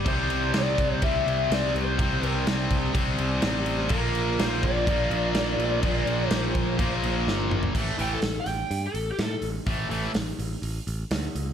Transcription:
0.05 picked electric bass C2, overdriven electric guitar C3 G3 C4, lead electric guitar C5, kick, crash
0.30 crash
0.54 picked electric bass C2, lead electric guitar D5, snare, crash
0.78 picked electric bass C2, kick, crash
1.02 picked electric bass C2, overdriven electric guitar C3 G3 C4, lead electric guitar E5, kick, crash
1.26 picked electric bass C2, lead electric guitar E5, crash
1.50 picked electric bass C2, lead electric guitar D5, snare, crash
1.74 picked electric bass C2, lead electric guitar C5, crash
1.98 picked electric bass C2, overdriven electric guitar C3 G3 C4, kick, crash
2.22 picked electric bass C2, crash
2.27 lead electric guitar A#4
2.47 picked electric bass C2, snare, crash
2.70 picked electric bass C2, kick, crash
2.94 picked electric bass C2, overdriven electric guitar C3 G3 C4, kick, crash
3.18 picked electric bass C2, crash
3.42 picked electric bass A1, snare, crash
3.66 crash
3.89 picked electric bass A#1, overdriven electric guitar A#2 F3 A#3, lead electric guitar A#4, kick, crash
4.15 crash
4.39 picked electric bass A#1, lead electric guitar C5, snare, crash
4.63 picked electric bass A#1, lead electric guitar D5, kick, crash
4.86 picked electric bass A#1, overdriven electric guitar A#2 F3, kick, crash
4.90 overdriven electric guitar A#3
5.10 picked electric bass A#1, crash
5.34 picked electric bass A#1, snare, crash
5.58 picked electric bass A#1, crash
5.83 picked electric bass A#1, overdriven electric guitar A#2 F3 A#3, kick, crash
6.06 picked electric bass A#1, crash
6.30 picked electric bass A#1, lead electric guitar C5, snare, crash
6.55 picked electric bass A#1, kick, crash
6.77 picked electric bass A#1, overdriven electric guitar A#2 F3 A#3, kick, crash
7.03 picked electric bass A#1, crash
7.27 picked electric bass G1, snare
7.51 mid tom
7.63 floor tom
7.75 picked electric bass A1, overdriven electric guitar A2 E3 A3, kick, crash
7.98 picked electric bass A1, overdriven electric guitar A2 E3 A3, lead electric guitar G5, open hi-hat
8.14 lead electric guitar A4
8.22 picked electric bass A1, snare, open hi-hat
8.40 lead electric guitar G5
8.46 picked electric bass A1, snare, open hi-hat
8.71 picked electric bass G2, open hi-hat
8.87 lead electric guitar A4
8.94 picked electric bass A1, open hi-hat
9.11 lead electric guitar G4
9.19 picked electric bass A2, snare, open hi-hat
9.23 lead electric guitar A4
9.42 picked electric bass A1, open hi-hat
9.66 picked electric bass A1, overdriven electric guitar A2 E3 A3, kick, open hi-hat
9.89 picked electric bass A1, overdriven electric guitar A2 E3 A3, open hi-hat
10.14 picked electric bass A1, snare, open hi-hat
10.39 picked electric bass A1, open hi-hat
10.62 picked electric bass A1, open hi-hat
10.87 picked electric bass A1, open hi-hat
11.11 picked electric bass D2, snare, open hi-hat
11.35 picked electric bass C#2, open hi-hat

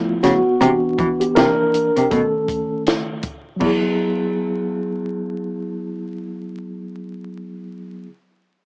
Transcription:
Already playing: tine electric piano F3 A3 B3 E4 F4
0.23 cello C#3, tine electric piano B3 F#4, snare, closed hi-hat
0.61 cello C3, tine electric piano E3 B3 D4, closed hi-hat
0.99 cello E3, kick, closed hi-hat
1.20 tine electric piano B3 G4, closed hi-hat
1.35 cello C3, tine electric piano E3 A#3 D4 A#4, snare, closed hi-hat
1.74 closed hi-hat
1.96 cello C3, closed hi-hat
2.11 cello B2, tine electric piano D#3 A3 C#4 A4, kick, closed hi-hat
2.48 kick, closed hi-hat
2.86 snare, closed hi-hat
3.23 kick, closed hi-hat
3.56 tine electric piano F#3 B3
3.61 cello E2, tine electric piano E4, kick, crash
3.66 tine electric piano G#4

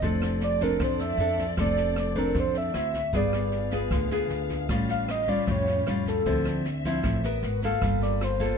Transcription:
0.01 upright bass F1, nylon-string guitar F3 C4 D4 A4, string section C4 A4 D5, kick, snare
0.22 cross-stick, snare
0.41 soft synth lead D5, snare
0.60 nylon-string guitar C4 D4 A4, soft synth lead A#4, kick, snare
0.80 upright bass F2, nylon-string guitar F3, soft synth lead C5, kick, cross-stick, snare
0.99 soft synth lead E5, snare
1.17 upright bass F2, nylon-string guitar C4 D4 A4, snare
1.38 kick, snare
1.57 upright bass F1, nylon-string guitar F3 C4 D4 A4, soft synth lead D5, kick, cross-stick, snare
1.77 snare
1.96 soft synth lead D5, cross-stick, snare
2.15 nylon-string guitar C4 D4 A4, soft synth lead A#4, kick, snare
2.35 upright bass F2, nylon-string guitar F3, kick, snare
2.40 soft synth lead C5
2.54 soft synth lead E5, snare
2.74 upright bass D2, nylon-string guitar C4 E4 F#4, string section F#4 E5, cross-stick, snare
2.93 kick, snare
3.13 upright bass G1, nylon-string guitar G3 B3 F4 G#4, string section B3 G#4 F5, soft synth lead D5, kick, snare
3.33 cross-stick, snare
3.52 snare
3.71 nylon-string guitar B3 F4 G#4, kick, snare
3.91 upright bass D2, nylon-string guitar D3, kick, cross-stick, snare
4.11 nylon-string guitar B3 F4 G#4, snare
4.30 upright bass D2, snare
4.49 kick, snare
4.69 upright bass A1, nylon-string guitar A2 G3 C#4 F4, string section C#4 G4, kick, cross-stick, snare
4.89 soft synth lead F5, snare
5.08 soft synth lead D#5, cross-stick, snare
5.28 nylon-string guitar G3 C#4 F4, soft synth lead D5, kick, snare
5.47 upright bass F2, nylon-string guitar A2, kick, snare
5.51 soft synth lead C#5
5.67 snare
5.87 upright bass F2, nylon-string guitar G3 C#4 F4, cross-stick, snare
6.07 soft synth lead A4, kick, snare
6.26 upright bass D2, nylon-string guitar D3 F3 C4 E4, string section C4 E5, kick, snare
6.45 cross-stick, snare
6.65 snare
6.85 nylon-string guitar F3 C4 E4, kick, snare
7.04 upright bass A1, nylon-string guitar A2, kick, cross-stick, snare
7.23 nylon-string guitar B3 F#4 A#4, snare
7.42 upright bass G#1, string section F#4 B4, snare
7.62 nylon-string guitar A#3 F4 A4, soft synth lead F5, kick, snare
7.82 upright bass G1, nylon-string guitar G3, string section A#3 F4, kick, cross-stick, snare
8.02 soft synth lead D5, snare
8.21 soft synth lead C5, cross-stick, snare
8.40 nylon-string guitar A#3 F4 A4, kick, snare

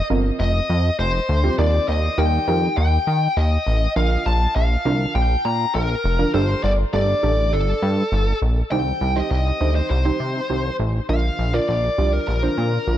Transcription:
0.10 analog synth bass G1, synth pluck C4 F4 A#4
0.40 analog synth bass F1, lead electric guitar D#5
0.70 analog synth bass F2
0.99 analog synth bass F1, lead electric guitar C5
1.29 analog synth bass D2
1.44 synth pluck C4 F4 G4
1.59 analog synth bass D#2, synth pluck D#4 G4 A#4, lead electric guitar D5
1.88 analog synth bass D#2, lead electric guitar D#5
2.18 analog synth bass D#2, synth pluck D#4 G4 A#4, lead electric guitar G5
2.48 analog synth bass F2, synth pluck D#4 G4 A#4
2.77 analog synth bass D#2, lead electric guitar G5
3.07 analog synth bass D#3
3.37 analog synth bass D#2, lead electric guitar D#5
3.67 analog synth bass A1
3.96 analog synth bass A#1, synth pluck D4 F4 A#4, lead electric guitar F5
4.26 analog synth bass A#1, lead electric guitar A5
4.56 analog synth bass A#1, lead electric guitar F5
4.85 analog synth bass C2, synth pluck D4 F4 A#4
5.15 analog synth bass A#1, lead electric guitar G5
5.45 analog synth bass A#2, lead electric guitar A#5
5.75 analog synth bass A#1, lead electric guitar A#4
6.04 analog synth bass F1
6.19 synth pluck D4 F4 A#4
6.34 analog synth bass G1, synth pluck D4 G4 A4, lead electric guitar C5
6.64 analog synth bass G1, lead electric guitar D5
6.93 analog synth bass G1, synth pluck D4 G4 A4, lead electric guitar D5
7.23 analog synth bass A1, synth pluck D4 G4 A4
7.53 analog synth bass G1, lead electric guitar A4
7.82 analog synth bass G2
8.12 analog synth bass G1
8.42 analog synth bass A#1
8.71 analog synth bass C2, synth pluck D#4 G4 C5, lead electric guitar G5
9.01 analog synth bass C2
9.16 synth pluck D#4 G4 C5, lead electric guitar D#5
9.31 analog synth bass C2, lead electric guitar D#5
9.61 analog synth bass D2, synth pluck D#4 G4 C5
9.75 lead electric guitar C5
9.90 analog synth bass C2, lead electric guitar C5
10.05 synth pluck D#4 G4 C5
10.20 analog synth bass C3
10.50 analog synth bass C2, synth pluck D#4 G4 C5
10.79 analog synth bass A1
11.09 analog synth bass A#1, synth pluck D4 F4 A#4, lead electric guitar F5
11.39 analog synth bass A#1
11.54 synth pluck D4 F4 A#4, lead electric guitar D5
11.69 analog synth bass A#1, lead electric guitar D5
11.98 analog synth bass C2, synth pluck D4 F4 G4
12.13 lead electric guitar A#4
12.28 analog synth bass A#1, lead electric guitar A#4
12.43 synth pluck D4 F4 C5
12.58 analog synth bass A#2
12.87 analog synth bass A#1, synth pluck D4 F4 A#4

